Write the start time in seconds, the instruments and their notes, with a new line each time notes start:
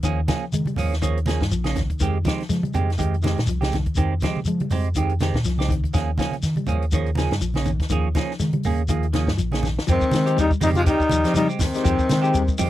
0.03 fingered electric bass D#2, clean electric guitar D#3 F3 A#3 C#4 G#4, kick, closed hi-hat, shekere
0.28 clean electric guitar F3 A#3 C#4 G#4, kick, snare, closed hi-hat, high conga, shekere
0.52 fingered electric bass D#3, clean electric guitar G#3, closed hi-hat, high conga, shekere
0.66 clean electric guitar G3, closed hi-hat, high conga
0.76 fingered electric bass D#2, clean electric guitar F3 A#3 C#4 G#4, open hi-hat, low conga, shekere
0.92 snare, closed hi-hat
1.02 clean electric guitar D#3 F3 A#3 C#4 G#4, kick, closed hi-hat, shekere
1.17 closed hi-hat
1.26 clean electric guitar D#3 F3 A#3 C#4 G#4, snare, closed hi-hat, high conga, shekere
1.40 fingered electric bass G2, kick, snare
1.51 fingered electric bass A#1, clean electric guitar F3, closed hi-hat, shekere
1.64 clean electric guitar A#3 C#4 G#4, snare, closed hi-hat, high conga
1.76 clean electric guitar D#3, kick, snare, closed hi-hat, low conga, shekere
1.90 muted fingered electric bass stroke, kick, closed hi-hat
2.00 fingered electric bass F2, clean electric guitar D#3 G#3 C4 G4, kick, closed hi-hat, shekere
2.25 clean electric guitar D#3 F3 G#3 C4 G4, kick, snare, closed hi-hat, high conga, shekere
2.40 snare, closed hi-hat
2.49 fingered electric bass F3, clean electric guitar G#3, snare, closed hi-hat, high conga, shekere
2.63 clean electric guitar G3, closed hi-hat, high conga
2.74 fingered electric bass F2, clean electric guitar D#3 G#3 C4 G4, closed hi-hat, low conga, shekere
2.90 snare, closed hi-hat
2.98 clean electric guitar D#3 G#3 C4 G4, kick, closed hi-hat, shekere
3.14 closed hi-hat
3.23 clean electric guitar D#3 G#3 C4 G4, snare, closed hi-hat, high conga, shekere
3.38 fingered electric bass A#2, snare, closed hi-hat
3.47 fingered electric bass C2, clean electric guitar F3, closed hi-hat, shekere
3.61 clean electric guitar G#3 C4 G4, snare, closed hi-hat, high conga
3.71 clean electric guitar D#3, snare, closed hi-hat, low conga, shekere
3.86 muted fingered electric bass stroke, kick, closed hi-hat
3.95 fingered electric bass F2, clean electric guitar D#3 G#3 C4 G4, kick, closed hi-hat, shekere
4.21 clean electric guitar D#3 F3 G#3 C4 G4, kick, snare, closed hi-hat, high conga, shekere
4.37 high conga
4.45 fingered electric bass F3, clean electric guitar G#3, closed hi-hat, shekere
4.60 clean electric guitar G3, closed hi-hat, high conga
4.70 fingered electric bass F2, clean electric guitar G#3 C4 G4, open hi-hat, low conga, shekere
4.84 closed hi-hat
4.95 clean electric guitar D#3 G#3 C4 G4, kick, closed hi-hat, shekere
5.09 closed hi-hat
5.20 clean electric guitar D#3 G#3 C4 G4, snare, closed hi-hat, high conga, shekere
5.34 fingered electric bass A#2, kick, snare
5.44 fingered electric bass C2, clean electric guitar F3, snare, closed hi-hat, shekere
5.58 clean electric guitar G#3 C4 G4, snare, closed hi-hat, high conga
5.69 clean electric guitar D#3, kick, closed hi-hat, high conga, low conga, shekere
5.84 muted fingered electric bass stroke, kick, closed hi-hat
5.94 fingered electric bass D#2, clean electric guitar D#3 F3 A#3 C#4 G#4, kick, snare, closed hi-hat, shekere
6.18 clean electric guitar F3 A#3 C#4 G#4, kick, snare, closed hi-hat, high conga, shekere
6.31 closed hi-hat, high conga
6.43 fingered electric bass D#3, snare, closed hi-hat, shekere
6.56 clean electric guitar G3, closed hi-hat, high conga
6.67 fingered electric bass D#2, clean electric guitar F3 A#3 C#4 G#4, closed hi-hat, low conga, shekere
6.82 closed hi-hat
6.92 clean electric guitar D#3 F3 A#3 C#4 G#4, kick, closed hi-hat, low conga, shekere
7.06 closed hi-hat
7.15 clean electric guitar C#3 F3 A#3 C#4 G#4, snare, closed hi-hat, high conga, shekere
7.31 fingered electric bass G2, snare, closed hi-hat
7.41 fingered electric bass A#1, clean electric guitar F3, closed hi-hat, shekere
7.54 clean electric guitar A#3 C#4 G#4, snare, closed hi-hat, high conga
7.66 clean electric guitar D#3, closed hi-hat, low conga, shekere
7.80 muted fingered electric bass stroke, kick, snare, closed hi-hat
7.89 fingered electric bass D#2, clean electric guitar D#3 F3 A#3 C#4 G#4, kick, closed hi-hat, low conga, shekere
8.15 clean electric guitar F3 A#3 C#4 G#4, kick, snare, closed hi-hat, high conga, shekere
8.31 snare
8.40 fingered electric bass D#3, clean electric guitar G#3, snare, closed hi-hat, high conga, shekere
8.53 clean electric guitar G3, closed hi-hat, high conga
8.63 fingered electric bass D#2, clean electric guitar A#3 C#4 G#4, muted clean electric guitar stroke, open hi-hat, low conga, shekere
8.78 closed hi-hat
8.88 clean electric guitar D#3 F3 A#3 G#4, muted clean electric guitar stroke, kick, closed hi-hat, shekere
9.03 closed hi-hat
9.13 clean electric guitar D#3 F3 A#3 C#4 G#4, snare, closed hi-hat, high conga, shekere
9.27 fingered electric bass G2, kick, snare
9.37 fingered electric bass A#1, clean electric guitar F3, closed hi-hat, shekere
9.52 clean electric guitar A#3 C#4 G#4, snare, closed hi-hat, high conga
9.63 clean electric guitar D#3, snare, low conga, shekere
9.79 muted fingered electric bass stroke, snare
9.87 fingered electric bass F2, baritone saxophone C3, clean electric guitar D#3 F3 G#3 C4 G4, kick, closed hi-hat, high conga, shekere
9.91 tenor saxophone D#3, trombone C4
10.01 muted fingered electric bass stroke, kick, shekere
10.11 fingered electric bass D#3, clean electric guitar G#3, snare, closed hi-hat, high conga, shekere
10.26 tine electric piano G#3 C4 D#4 G4, clean electric guitar G#3 C4 G4, closed hi-hat, shekere
10.37 fingered electric bass D#2, baritone saxophone D#3, clean electric guitar G3, trombone D#4, closed hi-hat, high conga, shekere
10.41 tenor saxophone G3
10.51 kick, shekere
10.61 fingered electric bass F2, clean electric guitar D#3 F3 G#3 C4 G4, baritone saxophone D#3, trombone D#4, open hi-hat, high conga, low conga, shekere
10.66 tenor saxophone G3
10.74 baritone saxophone F3, tine electric piano G#3 C4 D#4 G4, trombone F4, closed hi-hat, high conga, shekere
10.79 tenor saxophone G#3
10.85 clean electric guitar D#3 C4 G4, baritone saxophone D#3, trombone D#4, muted clean electric guitar stroke, kick, closed hi-hat, high conga, shekere
10.90 tenor saxophone G3
11.00 kick, shekere
11.09 fingered electric bass D#2, clean electric guitar F3, closed hi-hat, high conga, shekere
11.24 fingered electric bass F3, tine electric piano G#3 C4 D#4 G4, clean electric guitar G#3 C4 G4, snare, closed hi-hat, shekere
11.34 baritone saxophone D#3, clean electric guitar G3, trombone D#4, closed hi-hat, high conga, shekere
11.38 tenor saxophone G3
11.48 clean electric guitar G#3 C4 G4, shekere
11.59 baritone saxophone C3, clean electric guitar D#3, trombone C4, kick, snare, open hi-hat, low conga, shekere
11.63 tenor saxophone D#3
11.74 tine electric piano G#3 C4 D#4 G4, snare, closed hi-hat, shekere
11.83 fingered electric bass F2, clean electric guitar D#3 F3 G#3 C4 G4, kick, closed hi-hat, high conga, shekere
11.99 muted fingered electric bass stroke, kick, shekere
12.09 fingered electric bass D#3, clean electric guitar G#3, snare, closed hi-hat, high conga, shekere
12.22 tine electric piano G#3 C4 D#4 G4, clean electric guitar G#3 C4 G4, shekere
12.34 fingered electric bass D#2, clean electric guitar G3, closed hi-hat, high conga, shekere
12.48 kick, shekere
12.58 fingered electric bass F2, clean electric guitar D#3 F3 G#3 C4 G4, open hi-hat, low conga, shekere